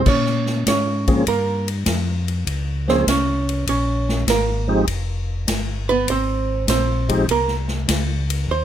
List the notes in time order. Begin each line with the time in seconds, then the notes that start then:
0.06 A#2 C#4 C#5, kick, crash
0.26 snare
0.46 snare
0.66 G#2 C#4 C#5, kick, snare, hi-hat pedal, ride
1.08 F3 A#3 C4 C#4 G#4, kick, ride
1.26 G2 A#3 A#4, kick, ride
1.68 ride
1.86 F2, kick, snare, hi-hat pedal, ride
2.28 ride
2.47 C#2, kick, ride
2.88 F3 A#3 C4 C#4 G#4 C5, snare
3.07 C2 C#4 C#5, kick, snare, hi-hat pedal, ride
3.49 ride
3.67 A#1 C#4 C#5, kick, ride
4.09 snare
4.27 G#1 A#3 A#4, kick, snare, hi-hat pedal, ride
4.68 F3 G#3 C4 D#4 G4
4.87 F1, kick, ride
5.47 G1, kick, snare, hi-hat pedal, ride
5.89 B3 B4
6.08 G#1 C4 C5, kick, ride
6.67 A#1 C4 C5, kick, snare, hi-hat pedal, ride
7.09 F3 G#3 C4 D#4 G4, kick, ride
7.28 C2 A#3 A#4, kick, ride
7.48 snare
7.68 snare
7.88 C#2, kick, snare, hi-hat pedal, ride
8.30 ride
8.48 D#2 C5, kick